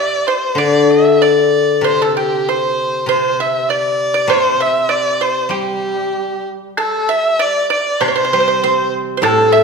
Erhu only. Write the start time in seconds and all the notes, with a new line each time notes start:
Already playing: D5
0.27 C5
0.58 D5
0.91 E5
1.22 D5
1.86 C5
2.02 A4
2.18 G4
2.49 C5
3.10 C5
3.41 E5
3.69 D5
4.30 C5
4.62 E5
4.91 D5
5.22 C5
5.53 G4
6.79 A4
7.10 E5
7.42 D5
7.71 D5
8.02 C5
9.22 A4
9.52 E5